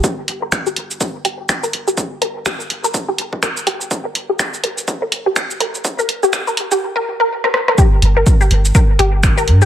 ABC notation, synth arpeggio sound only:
X:1
M:4/4
L:1/16
Q:"Swing 16ths" 1/4=124
K:Gm
V:1 name="Synth arpeggio sound"
G z2 B z G z2 B z G z2 B z G | z2 B z G z2 B z G z2 B z G z | z B z G z2 B z2 B z G z2 B z | z B z G z B z G z B z B z B z B |
G z2 B z G z2 B z G z2 B z G |]